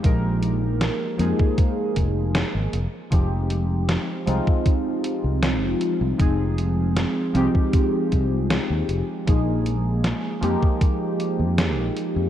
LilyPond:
<<
  \new Staff \with { instrumentName = "Synth keys" } { \time 4/4 \key f \minor \tempo 4 = 78 <f aes bes ees' bes'>4. <f aes bes ees' aes'>2 r8 | <f aes c' ees' g'>4. <f aes c' ees' f'>2~ <f aes c' ees' f'>8 | <f aes c' ees' aes'>4. <f aes c' ees' g'>2~ <f aes c' ees' g'>8 | <f aes bes ees' aes'>4. <f aes bes ees' g'>2~ <f aes bes ees' g'>8 | }
  \new Staff \with { instrumentName = "Fretless electric bass" } { \clef bass \time 4/4 \key f \minor bes,,4 r8 f,16 r8. f,,8 r16 aes,,16 f,,16 r16 | f,,4 r8 c,16 r4 c,8 f,,16 r16 c,16 | f,,4 r8 c,16 r8. c,8 r16 ees,16 f,,16 r16 | bes,,4 r8 f,16 r4 f,8 bes,,16 r16 f,16 | }
  \new DrumStaff \with { instrumentName = "Drums" } \drummode { \time 4/4 <hh bd>8 hh8 <hh sn>8 hh16 bd16 <hh bd>8 <hh bd>8 <hh sn>8 hh8 | <hh bd>8 hh8 <hh sn>8 hh16 bd16 <hh bd>8 hh8 <hh sn>8 hh8 | <hh bd>8 hh8 <hh sn>8 hh16 bd16 <hh bd>8 <hh bd>8 <hh sn>8 hh8 | <hh bd>8 hh8 <hh sn>8 hh16 bd16 <hh bd>8 hh8 <hh sn>8 hh8 | }
>>